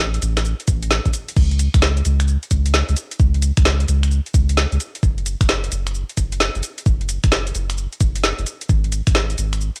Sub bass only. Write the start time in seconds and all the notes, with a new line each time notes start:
Already playing: A1
0.22 A1
0.68 A1
1.06 A1
1.36 C#2
1.74 C#2
2.05 C#2
2.51 C#2
2.89 C#2
3.20 C#2
3.58 C#2
3.88 C#2
4.34 C#2
4.72 C#2
5.03 F#1
5.41 F#1
5.72 F#1
6.17 F#1
6.55 F#1
6.86 F#1
7.24 F#1
7.55 F#1
8.01 F#1
8.38 F#1
8.69 G#1
9.07 G#1
9.38 G#1